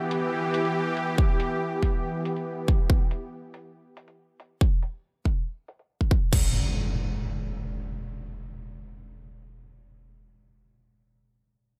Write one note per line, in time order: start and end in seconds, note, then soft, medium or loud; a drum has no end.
0.00 2.86 E3 medium
0.00 2.86 B3 medium
0.00 2.86 G4 medium
0.11 closed hi-hat medium
0.54 closed hi-hat medium
0.65 closed hi-hat soft
0.97 closed hi-hat medium
1.18 kick loud
1.40 closed hi-hat medium
1.83 kick medium
1.83 closed hi-hat medium
2.25 closed hi-hat medium
2.36 closed hi-hat soft
2.68 kick medium
2.68 closed hi-hat medium
2.90 kick loud
3.11 closed hi-hat medium
3.54 closed hi-hat medium
3.97 closed hi-hat medium
4.08 closed hi-hat soft
4.40 closed hi-hat medium
4.61 kick loud
4.83 closed hi-hat medium
5.25 kick medium
5.25 closed hi-hat medium
5.68 closed hi-hat medium
5.79 closed hi-hat soft
6.01 kick medium
6.11 kick medium
6.11 closed hi-hat medium
6.33 kick loud
6.33 crash medium
6.33 impact medium